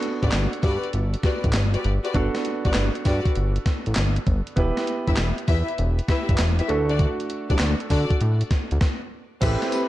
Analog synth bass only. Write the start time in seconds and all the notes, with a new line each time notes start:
0.23 A1
0.33 G1
0.63 G2
0.94 G1
1.44 A1
1.55 G1
1.85 G1
2.15 G1
2.65 A1
2.76 G1
3.06 G2
3.37 G1
3.87 A1
3.97 G1
4.27 G1
4.57 E1
5.08 G1
5.18 E1
5.48 E2
5.79 E1
6.29 G1
6.39 E1
6.70 D2
7.50 C2
7.61 D2
7.91 D3
8.21 A2
8.72 D2
9.42 A1